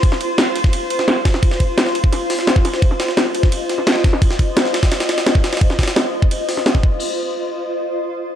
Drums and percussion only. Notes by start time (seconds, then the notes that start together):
0.03 kick, closed hi-hat, ride
0.12 snare
0.21 closed hi-hat, ride
0.38 snare, closed hi-hat, ride
0.47 closed hi-hat
0.56 open hi-hat, ride
0.64 kick, snare
0.73 closed hi-hat, ride
0.90 closed hi-hat, ride
0.99 snare
1.08 snare, closed hi-hat, ride
1.17 closed hi-hat
1.25 kick, snare, open hi-hat, ride
1.34 snare
1.43 kick, closed hi-hat, ride
1.51 snare
1.60 kick, closed hi-hat, ride
1.78 snare, closed hi-hat, ride
1.86 snare, closed hi-hat
1.95 open hi-hat, ride
2.04 kick
2.13 snare, closed hi-hat, ride
2.30 snare, closed hi-hat, open hi-hat
2.39 snare
2.47 snare, closed hi-hat, ride
2.56 kick, closed hi-hat
2.65 snare, open hi-hat, ride
2.74 snare
2.82 kick, closed hi-hat, ride
2.91 snare
3.00 snare, closed hi-hat, ride
3.08 snare
3.17 snare, closed hi-hat, ride
3.26 closed hi-hat
3.35 open hi-hat, ride
3.43 kick, snare
3.52 closed hi-hat, ride
3.69 snare, closed hi-hat, ride
3.78 snare
3.87 snare, closed hi-hat, ride
3.96 snare
4.04 kick, snare, open hi-hat, ride
4.13 snare
4.22 kick, closed hi-hat, ride
4.31 snare
4.39 kick, closed hi-hat, ride
4.57 snare, ride
4.65 snare, closed hi-hat
4.74 snare, open hi-hat, ride
4.83 kick, snare, ride
4.92 snare, closed hi-hat, ride
5.00 snare, ride
5.09 snare, ride
5.18 snare, ride
5.26 snare, ride
5.35 kick
5.44 snare, open hi-hat, ride
5.53 snare, ride
5.57 snare, ride
5.61 kick, closed hi-hat, ride
5.70 snare
5.79 kick, snare, closed hi-hat, ride
5.83 snare, ride
5.88 snare, ride
5.96 snare, ride
6.14 open hi-hat
6.22 kick
6.31 closed hi-hat, ride
6.49 snare, closed hi-hat, open hi-hat
6.57 snare
6.66 snare, ride
6.75 kick, closed hi-hat
6.83 kick, crash